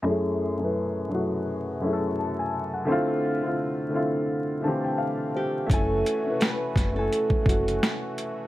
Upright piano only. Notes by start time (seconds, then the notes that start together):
0.02 F#2 A3 C#4
0.07 E4 G#4
0.57 F#2 A3 C#4
0.62 E4 B4
1.08 F#2 A3 C#4
1.13 E4 F#4
1.80 F#2 A3 C#4
1.85 E4 G#4
1.93 A4
2.18 A5
2.39 G#5
2.74 F#5
2.85 D3 A3 C4
2.90 E4 F4
3.40 D3 A3 C4
3.45 E4 F4
3.89 D3 A3 C4
3.94 E4 F4
4.61 D3 A3 C4 A5
4.66 E3 G4
4.84 G5
4.98 F5
5.35 C5
5.66 A3 C#4
5.71 E4 G#5
6.23 A3 C#4
6.28 E4 B4
6.92 A3 C#4
6.97 E4 G#5
7.42 A3 C#4
7.47 E4 F#4